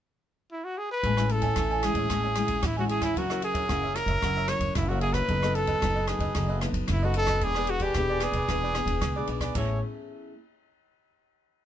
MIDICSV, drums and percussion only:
0, 0, Header, 1, 2, 480
1, 0, Start_track
1, 0, Key_signature, 3, "major"
1, 0, Tempo, 533333
1, 932, Time_signature, 4, 2, 24, 8
1, 10485, End_track
2, 0, Start_track
2, 0, Title_t, "Drums"
2, 930, Note_on_c, 9, 51, 42
2, 932, Note_on_c, 9, 36, 63
2, 1020, Note_off_c, 9, 51, 0
2, 1022, Note_off_c, 9, 36, 0
2, 1054, Note_on_c, 9, 37, 64
2, 1144, Note_off_c, 9, 37, 0
2, 1164, Note_on_c, 9, 51, 44
2, 1254, Note_off_c, 9, 51, 0
2, 1274, Note_on_c, 9, 51, 48
2, 1278, Note_on_c, 9, 36, 60
2, 1364, Note_off_c, 9, 51, 0
2, 1368, Note_off_c, 9, 36, 0
2, 1402, Note_on_c, 9, 37, 62
2, 1402, Note_on_c, 9, 51, 50
2, 1409, Note_on_c, 9, 36, 84
2, 1492, Note_off_c, 9, 37, 0
2, 1492, Note_off_c, 9, 51, 0
2, 1499, Note_off_c, 9, 36, 0
2, 1644, Note_on_c, 9, 37, 64
2, 1644, Note_on_c, 9, 51, 47
2, 1734, Note_off_c, 9, 37, 0
2, 1734, Note_off_c, 9, 51, 0
2, 1753, Note_on_c, 9, 51, 47
2, 1757, Note_on_c, 9, 36, 60
2, 1843, Note_off_c, 9, 51, 0
2, 1847, Note_off_c, 9, 36, 0
2, 1887, Note_on_c, 9, 37, 62
2, 1887, Note_on_c, 9, 51, 48
2, 1888, Note_on_c, 9, 36, 58
2, 1977, Note_off_c, 9, 37, 0
2, 1977, Note_off_c, 9, 51, 0
2, 1978, Note_off_c, 9, 36, 0
2, 2118, Note_on_c, 9, 37, 61
2, 2118, Note_on_c, 9, 51, 51
2, 2208, Note_off_c, 9, 37, 0
2, 2208, Note_off_c, 9, 51, 0
2, 2230, Note_on_c, 9, 51, 50
2, 2236, Note_on_c, 9, 36, 57
2, 2320, Note_off_c, 9, 51, 0
2, 2326, Note_off_c, 9, 36, 0
2, 2363, Note_on_c, 9, 37, 67
2, 2363, Note_on_c, 9, 51, 52
2, 2368, Note_on_c, 9, 36, 87
2, 2453, Note_off_c, 9, 37, 0
2, 2453, Note_off_c, 9, 51, 0
2, 2458, Note_off_c, 9, 36, 0
2, 2603, Note_on_c, 9, 51, 46
2, 2693, Note_off_c, 9, 51, 0
2, 2714, Note_on_c, 9, 37, 60
2, 2714, Note_on_c, 9, 51, 47
2, 2716, Note_on_c, 9, 36, 59
2, 2804, Note_off_c, 9, 37, 0
2, 2804, Note_off_c, 9, 51, 0
2, 2806, Note_off_c, 9, 36, 0
2, 2847, Note_on_c, 9, 36, 57
2, 2850, Note_on_c, 9, 51, 43
2, 2937, Note_off_c, 9, 36, 0
2, 2940, Note_off_c, 9, 51, 0
2, 2969, Note_on_c, 9, 37, 61
2, 3059, Note_off_c, 9, 37, 0
2, 3079, Note_on_c, 9, 51, 48
2, 3169, Note_off_c, 9, 51, 0
2, 3192, Note_on_c, 9, 36, 68
2, 3193, Note_on_c, 9, 51, 50
2, 3282, Note_off_c, 9, 36, 0
2, 3283, Note_off_c, 9, 51, 0
2, 3322, Note_on_c, 9, 37, 65
2, 3322, Note_on_c, 9, 51, 41
2, 3324, Note_on_c, 9, 36, 74
2, 3412, Note_off_c, 9, 37, 0
2, 3412, Note_off_c, 9, 51, 0
2, 3414, Note_off_c, 9, 36, 0
2, 3559, Note_on_c, 9, 37, 59
2, 3559, Note_on_c, 9, 51, 42
2, 3649, Note_off_c, 9, 37, 0
2, 3649, Note_off_c, 9, 51, 0
2, 3669, Note_on_c, 9, 51, 40
2, 3670, Note_on_c, 9, 36, 60
2, 3759, Note_off_c, 9, 51, 0
2, 3760, Note_off_c, 9, 36, 0
2, 3801, Note_on_c, 9, 36, 61
2, 3801, Note_on_c, 9, 37, 61
2, 3801, Note_on_c, 9, 51, 39
2, 3891, Note_off_c, 9, 36, 0
2, 3891, Note_off_c, 9, 37, 0
2, 3891, Note_off_c, 9, 51, 0
2, 4030, Note_on_c, 9, 37, 66
2, 4030, Note_on_c, 9, 51, 44
2, 4120, Note_off_c, 9, 37, 0
2, 4120, Note_off_c, 9, 51, 0
2, 4144, Note_on_c, 9, 51, 43
2, 4148, Note_on_c, 9, 36, 67
2, 4234, Note_off_c, 9, 51, 0
2, 4238, Note_off_c, 9, 36, 0
2, 4277, Note_on_c, 9, 37, 62
2, 4277, Note_on_c, 9, 51, 49
2, 4279, Note_on_c, 9, 36, 84
2, 4367, Note_off_c, 9, 37, 0
2, 4367, Note_off_c, 9, 51, 0
2, 4369, Note_off_c, 9, 36, 0
2, 4511, Note_on_c, 9, 51, 42
2, 4601, Note_off_c, 9, 51, 0
2, 4624, Note_on_c, 9, 37, 60
2, 4624, Note_on_c, 9, 51, 43
2, 4626, Note_on_c, 9, 36, 57
2, 4714, Note_off_c, 9, 37, 0
2, 4714, Note_off_c, 9, 51, 0
2, 4716, Note_off_c, 9, 36, 0
2, 4756, Note_on_c, 9, 51, 38
2, 4758, Note_on_c, 9, 36, 59
2, 4846, Note_off_c, 9, 51, 0
2, 4848, Note_off_c, 9, 36, 0
2, 4884, Note_on_c, 9, 37, 62
2, 4974, Note_off_c, 9, 37, 0
2, 4995, Note_on_c, 9, 51, 46
2, 5085, Note_off_c, 9, 51, 0
2, 5105, Note_on_c, 9, 51, 46
2, 5108, Note_on_c, 9, 36, 60
2, 5195, Note_off_c, 9, 51, 0
2, 5198, Note_off_c, 9, 36, 0
2, 5239, Note_on_c, 9, 36, 80
2, 5239, Note_on_c, 9, 37, 61
2, 5239, Note_on_c, 9, 51, 49
2, 5329, Note_off_c, 9, 36, 0
2, 5329, Note_off_c, 9, 37, 0
2, 5329, Note_off_c, 9, 51, 0
2, 5467, Note_on_c, 9, 37, 62
2, 5467, Note_on_c, 9, 51, 46
2, 5557, Note_off_c, 9, 37, 0
2, 5557, Note_off_c, 9, 51, 0
2, 5582, Note_on_c, 9, 51, 42
2, 5585, Note_on_c, 9, 36, 63
2, 5672, Note_off_c, 9, 51, 0
2, 5675, Note_off_c, 9, 36, 0
2, 5712, Note_on_c, 9, 37, 58
2, 5712, Note_on_c, 9, 51, 47
2, 5717, Note_on_c, 9, 36, 64
2, 5802, Note_off_c, 9, 37, 0
2, 5802, Note_off_c, 9, 51, 0
2, 5807, Note_off_c, 9, 36, 0
2, 5951, Note_on_c, 9, 37, 66
2, 5951, Note_on_c, 9, 51, 47
2, 6041, Note_off_c, 9, 37, 0
2, 6041, Note_off_c, 9, 51, 0
2, 6065, Note_on_c, 9, 51, 46
2, 6066, Note_on_c, 9, 36, 60
2, 6155, Note_off_c, 9, 51, 0
2, 6156, Note_off_c, 9, 36, 0
2, 6189, Note_on_c, 9, 37, 60
2, 6189, Note_on_c, 9, 51, 51
2, 6196, Note_on_c, 9, 36, 82
2, 6279, Note_off_c, 9, 37, 0
2, 6279, Note_off_c, 9, 51, 0
2, 6286, Note_off_c, 9, 36, 0
2, 6424, Note_on_c, 9, 51, 51
2, 6514, Note_off_c, 9, 51, 0
2, 6540, Note_on_c, 9, 37, 66
2, 6540, Note_on_c, 9, 51, 42
2, 6544, Note_on_c, 9, 36, 60
2, 6630, Note_off_c, 9, 37, 0
2, 6630, Note_off_c, 9, 51, 0
2, 6634, Note_off_c, 9, 36, 0
2, 6672, Note_on_c, 9, 51, 45
2, 6676, Note_on_c, 9, 36, 58
2, 6762, Note_off_c, 9, 51, 0
2, 6766, Note_off_c, 9, 36, 0
2, 6794, Note_on_c, 9, 37, 59
2, 6884, Note_off_c, 9, 37, 0
2, 6903, Note_on_c, 9, 51, 51
2, 6993, Note_off_c, 9, 51, 0
2, 7016, Note_on_c, 9, 51, 51
2, 7023, Note_on_c, 9, 36, 59
2, 7106, Note_off_c, 9, 51, 0
2, 7113, Note_off_c, 9, 36, 0
2, 7148, Note_on_c, 9, 37, 66
2, 7148, Note_on_c, 9, 51, 45
2, 7155, Note_on_c, 9, 36, 87
2, 7238, Note_off_c, 9, 37, 0
2, 7238, Note_off_c, 9, 51, 0
2, 7245, Note_off_c, 9, 36, 0
2, 7383, Note_on_c, 9, 37, 65
2, 7383, Note_on_c, 9, 51, 49
2, 7473, Note_off_c, 9, 37, 0
2, 7473, Note_off_c, 9, 51, 0
2, 7500, Note_on_c, 9, 51, 44
2, 7505, Note_on_c, 9, 36, 66
2, 7590, Note_off_c, 9, 51, 0
2, 7595, Note_off_c, 9, 36, 0
2, 7637, Note_on_c, 9, 36, 62
2, 7637, Note_on_c, 9, 37, 64
2, 7637, Note_on_c, 9, 51, 41
2, 7727, Note_off_c, 9, 36, 0
2, 7727, Note_off_c, 9, 37, 0
2, 7727, Note_off_c, 9, 51, 0
2, 7872, Note_on_c, 9, 37, 66
2, 7872, Note_on_c, 9, 51, 43
2, 7962, Note_off_c, 9, 37, 0
2, 7962, Note_off_c, 9, 51, 0
2, 7986, Note_on_c, 9, 36, 64
2, 7987, Note_on_c, 9, 51, 44
2, 8076, Note_off_c, 9, 36, 0
2, 8077, Note_off_c, 9, 51, 0
2, 8113, Note_on_c, 9, 37, 71
2, 8113, Note_on_c, 9, 51, 47
2, 8117, Note_on_c, 9, 36, 86
2, 8203, Note_off_c, 9, 37, 0
2, 8203, Note_off_c, 9, 51, 0
2, 8207, Note_off_c, 9, 36, 0
2, 8347, Note_on_c, 9, 51, 40
2, 8437, Note_off_c, 9, 51, 0
2, 8466, Note_on_c, 9, 36, 58
2, 8466, Note_on_c, 9, 37, 60
2, 8466, Note_on_c, 9, 51, 41
2, 8556, Note_off_c, 9, 36, 0
2, 8556, Note_off_c, 9, 37, 0
2, 8556, Note_off_c, 9, 51, 0
2, 8595, Note_on_c, 9, 49, 61
2, 8598, Note_on_c, 9, 36, 75
2, 8685, Note_off_c, 9, 49, 0
2, 8688, Note_off_c, 9, 36, 0
2, 10485, End_track
0, 0, End_of_file